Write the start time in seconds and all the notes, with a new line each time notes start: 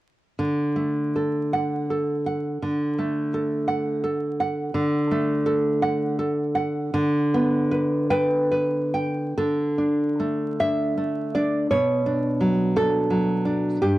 0.39 D3
0.76 A3
1.16 A4
1.53 F#5
1.90 A4
2.26 F#5
2.62 D3
2.98 A3
3.34 A4
3.68 F#5
4.04 A4
4.40 F#5
4.74 D3
5.11 A3
5.46 A4
5.82 F#5
6.19 A4
6.55 F#5
6.94 D3
7.34 B3
7.71 B4
8.10 B4 G5
8.52 B4
8.94 G5
9.38 D3 A4
9.78 D4
10.20 A3
10.60 D4 E5
10.98 A3
11.35 D4 D5
11.71 B2 C#5
12.06 D4
12.41 F#3
12.76 D4 A4
13.10 F#3
13.45 D4
13.82 G2 G4